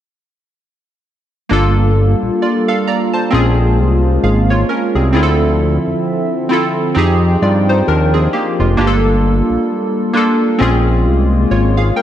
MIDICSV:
0, 0, Header, 1, 4, 480
1, 0, Start_track
1, 0, Tempo, 909091
1, 797, Time_signature, 4, 2, 24, 8
1, 6347, End_track
2, 0, Start_track
2, 0, Title_t, "Synth keys"
2, 0, Program_c, 0, 88
2, 789, Note_on_c, 0, 58, 82
2, 795, Note_on_c, 0, 62, 70
2, 802, Note_on_c, 0, 65, 71
2, 807, Note_on_c, 0, 69, 91
2, 901, Control_c, 0, 64, 127
2, 1039, Note_off_c, 0, 65, 0
2, 1042, Note_off_c, 0, 69, 0
2, 1278, Note_on_c, 0, 74, 59
2, 1280, Note_off_c, 0, 58, 0
2, 1280, Note_on_c, 0, 65, 49
2, 1284, Note_off_c, 0, 62, 0
2, 1410, Note_off_c, 0, 74, 0
2, 1411, Note_off_c, 0, 65, 0
2, 1417, Note_on_c, 0, 77, 67
2, 1420, Note_on_c, 0, 69, 60
2, 1512, Note_off_c, 0, 77, 0
2, 1514, Note_off_c, 0, 69, 0
2, 1518, Note_on_c, 0, 82, 66
2, 1521, Note_on_c, 0, 74, 53
2, 1650, Note_off_c, 0, 82, 0
2, 1652, Note_off_c, 0, 74, 0
2, 1655, Note_on_c, 0, 81, 64
2, 1658, Note_on_c, 0, 72, 52
2, 1745, Note_on_c, 0, 60, 82
2, 1752, Note_on_c, 0, 61, 73
2, 1758, Note_on_c, 0, 65, 71
2, 1764, Control_c, 0, 64, 0
2, 1765, Note_on_c, 0, 68, 90
2, 1872, Control_c, 0, 64, 127
2, 1883, Note_off_c, 0, 81, 0
2, 1885, Note_off_c, 0, 72, 0
2, 2231, Note_off_c, 0, 60, 0
2, 2233, Note_off_c, 0, 68, 0
2, 2234, Note_off_c, 0, 61, 0
2, 2237, Note_on_c, 0, 77, 61
2, 2238, Note_off_c, 0, 65, 0
2, 2239, Note_on_c, 0, 68, 50
2, 2369, Note_off_c, 0, 77, 0
2, 2370, Note_off_c, 0, 68, 0
2, 2377, Note_on_c, 0, 73, 62
2, 2381, Note_on_c, 0, 65, 56
2, 2473, Note_off_c, 0, 73, 0
2, 2475, Note_off_c, 0, 65, 0
2, 2477, Note_on_c, 0, 70, 67
2, 2481, Note_on_c, 0, 61, 56
2, 2609, Note_off_c, 0, 70, 0
2, 2611, Note_off_c, 0, 61, 0
2, 2615, Note_on_c, 0, 68, 62
2, 2620, Note_on_c, 0, 60, 51
2, 2700, Note_off_c, 0, 60, 0
2, 2707, Note_on_c, 0, 60, 79
2, 2713, Note_on_c, 0, 64, 71
2, 2718, Note_on_c, 0, 65, 73
2, 2720, Note_off_c, 0, 68, 0
2, 2723, Control_c, 0, 64, 0
2, 2726, Note_on_c, 0, 68, 73
2, 2760, Note_on_c, 0, 69, 86
2, 2761, Note_off_c, 0, 68, 0
2, 2801, Control_c, 0, 64, 127
2, 3199, Note_off_c, 0, 60, 0
2, 3203, Note_off_c, 0, 64, 0
2, 3205, Note_off_c, 0, 65, 0
2, 3226, Note_off_c, 0, 69, 0
2, 3427, Note_on_c, 0, 60, 79
2, 3435, Note_on_c, 0, 64, 69
2, 3441, Note_on_c, 0, 65, 71
2, 3448, Note_on_c, 0, 69, 81
2, 3661, Note_off_c, 0, 60, 0
2, 3667, Note_on_c, 0, 60, 82
2, 3674, Note_on_c, 0, 63, 73
2, 3676, Note_off_c, 0, 64, 0
2, 3679, Note_off_c, 0, 65, 0
2, 3681, Note_on_c, 0, 67, 74
2, 3682, Note_off_c, 0, 69, 0
2, 3684, Control_c, 0, 64, 0
2, 3687, Note_on_c, 0, 68, 94
2, 3763, Control_c, 0, 64, 127
2, 3912, Note_off_c, 0, 60, 0
2, 3916, Note_off_c, 0, 63, 0
2, 3919, Note_off_c, 0, 67, 0
2, 3920, Note_on_c, 0, 74, 59
2, 3922, Note_off_c, 0, 68, 0
2, 3922, Note_on_c, 0, 65, 51
2, 4051, Note_off_c, 0, 74, 0
2, 4052, Note_off_c, 0, 65, 0
2, 4061, Note_on_c, 0, 72, 66
2, 4064, Note_on_c, 0, 63, 56
2, 4155, Note_off_c, 0, 72, 0
2, 4156, Note_off_c, 0, 63, 0
2, 4161, Note_on_c, 0, 70, 66
2, 4164, Note_on_c, 0, 62, 53
2, 4291, Note_off_c, 0, 70, 0
2, 4293, Note_off_c, 0, 62, 0
2, 4297, Note_on_c, 0, 68, 67
2, 4301, Note_on_c, 0, 60, 57
2, 4392, Note_off_c, 0, 68, 0
2, 4395, Note_off_c, 0, 60, 0
2, 4398, Note_on_c, 0, 67, 65
2, 4402, Note_on_c, 0, 58, 57
2, 4530, Note_off_c, 0, 67, 0
2, 4532, Note_off_c, 0, 58, 0
2, 4540, Note_on_c, 0, 65, 59
2, 4542, Note_on_c, 0, 56, 51
2, 4631, Note_on_c, 0, 58, 81
2, 4637, Note_on_c, 0, 62, 77
2, 4638, Note_off_c, 0, 65, 0
2, 4644, Note_on_c, 0, 65, 68
2, 4645, Control_c, 0, 64, 0
2, 4650, Note_on_c, 0, 67, 72
2, 4683, Note_off_c, 0, 67, 0
2, 4684, Note_on_c, 0, 69, 91
2, 4746, Control_c, 0, 64, 127
2, 4767, Note_off_c, 0, 56, 0
2, 5122, Note_off_c, 0, 58, 0
2, 5125, Note_off_c, 0, 62, 0
2, 5128, Note_off_c, 0, 65, 0
2, 5148, Note_off_c, 0, 69, 0
2, 5351, Note_on_c, 0, 58, 81
2, 5356, Note_on_c, 0, 62, 70
2, 5362, Note_on_c, 0, 65, 69
2, 5370, Note_on_c, 0, 69, 86
2, 5589, Note_on_c, 0, 60, 83
2, 5594, Note_off_c, 0, 58, 0
2, 5595, Note_on_c, 0, 61, 76
2, 5596, Note_off_c, 0, 65, 0
2, 5597, Note_off_c, 0, 62, 0
2, 5602, Note_on_c, 0, 65, 74
2, 5603, Note_off_c, 0, 69, 0
2, 5605, Control_c, 0, 64, 0
2, 5608, Note_on_c, 0, 68, 91
2, 5705, Control_c, 0, 64, 127
2, 6075, Note_off_c, 0, 65, 0
2, 6078, Note_on_c, 0, 73, 59
2, 6081, Note_on_c, 0, 65, 52
2, 6083, Note_off_c, 0, 68, 0
2, 6210, Note_off_c, 0, 73, 0
2, 6211, Note_off_c, 0, 65, 0
2, 6216, Note_on_c, 0, 77, 66
2, 6220, Note_on_c, 0, 68, 55
2, 6273, Note_off_c, 0, 60, 0
2, 6276, Note_off_c, 0, 61, 0
2, 6312, Note_off_c, 0, 77, 0
2, 6314, Note_off_c, 0, 68, 0
2, 6317, Note_on_c, 0, 79, 67
2, 6319, Note_on_c, 0, 70, 57
2, 6347, Note_off_c, 0, 70, 0
2, 6347, Note_off_c, 0, 79, 0
2, 6347, End_track
3, 0, Start_track
3, 0, Title_t, "Analog synth pad"
3, 0, Program_c, 1, 89
3, 795, Note_on_c, 1, 55, 82
3, 795, Note_on_c, 1, 65, 71
3, 795, Note_on_c, 1, 69, 71
3, 796, Note_on_c, 1, 58, 83
3, 1747, Note_off_c, 1, 55, 0
3, 1747, Note_off_c, 1, 58, 0
3, 1747, Note_off_c, 1, 65, 0
3, 1747, Note_off_c, 1, 69, 0
3, 1758, Note_on_c, 1, 56, 84
3, 1758, Note_on_c, 1, 65, 94
3, 1759, Note_on_c, 1, 58, 76
3, 2708, Note_off_c, 1, 56, 0
3, 2708, Note_off_c, 1, 65, 0
3, 2709, Note_off_c, 1, 58, 0
3, 2718, Note_on_c, 1, 50, 82
3, 2719, Note_on_c, 1, 53, 86
3, 2719, Note_on_c, 1, 60, 74
3, 2719, Note_on_c, 1, 76, 74
3, 3668, Note_off_c, 1, 50, 0
3, 3668, Note_off_c, 1, 53, 0
3, 3668, Note_off_c, 1, 60, 0
3, 3668, Note_off_c, 1, 76, 0
3, 3677, Note_on_c, 1, 63, 79
3, 3678, Note_on_c, 1, 53, 81
3, 3678, Note_on_c, 1, 65, 95
3, 3678, Note_on_c, 1, 79, 76
3, 4628, Note_off_c, 1, 53, 0
3, 4628, Note_off_c, 1, 63, 0
3, 4628, Note_off_c, 1, 65, 0
3, 4628, Note_off_c, 1, 79, 0
3, 4638, Note_on_c, 1, 65, 73
3, 4639, Note_on_c, 1, 55, 83
3, 4639, Note_on_c, 1, 58, 85
3, 4640, Note_on_c, 1, 69, 71
3, 5588, Note_off_c, 1, 55, 0
3, 5588, Note_off_c, 1, 58, 0
3, 5588, Note_off_c, 1, 65, 0
3, 5589, Note_off_c, 1, 69, 0
3, 5598, Note_on_c, 1, 56, 85
3, 5599, Note_on_c, 1, 65, 93
3, 5600, Note_on_c, 1, 58, 74
3, 6347, Note_off_c, 1, 56, 0
3, 6347, Note_off_c, 1, 58, 0
3, 6347, Note_off_c, 1, 65, 0
3, 6347, End_track
4, 0, Start_track
4, 0, Title_t, "Analog synth bass"
4, 0, Program_c, 2, 38
4, 798, Note_on_c, 2, 31, 107
4, 1135, Note_off_c, 2, 31, 0
4, 1178, Note_on_c, 2, 34, 48
4, 1218, Note_off_c, 2, 34, 0
4, 1758, Note_on_c, 2, 34, 98
4, 1998, Note_on_c, 2, 36, 90
4, 2006, Note_off_c, 2, 34, 0
4, 2211, Note_off_c, 2, 36, 0
4, 2237, Note_on_c, 2, 32, 92
4, 2451, Note_off_c, 2, 32, 0
4, 2615, Note_on_c, 2, 36, 86
4, 2718, Note_on_c, 2, 38, 109
4, 2725, Note_off_c, 2, 36, 0
4, 3055, Note_off_c, 2, 38, 0
4, 3098, Note_on_c, 2, 41, 49
4, 3138, Note_off_c, 2, 41, 0
4, 3677, Note_on_c, 2, 41, 99
4, 3891, Note_off_c, 2, 41, 0
4, 3919, Note_on_c, 2, 43, 96
4, 4132, Note_off_c, 2, 43, 0
4, 4160, Note_on_c, 2, 39, 82
4, 4373, Note_off_c, 2, 39, 0
4, 4539, Note_on_c, 2, 29, 96
4, 4628, Note_off_c, 2, 29, 0
4, 4639, Note_on_c, 2, 31, 99
4, 4976, Note_off_c, 2, 31, 0
4, 5017, Note_on_c, 2, 34, 47
4, 5057, Note_off_c, 2, 34, 0
4, 5599, Note_on_c, 2, 34, 99
4, 5839, Note_on_c, 2, 36, 90
4, 5847, Note_off_c, 2, 34, 0
4, 6052, Note_off_c, 2, 36, 0
4, 6079, Note_on_c, 2, 32, 87
4, 6292, Note_off_c, 2, 32, 0
4, 6347, End_track
0, 0, End_of_file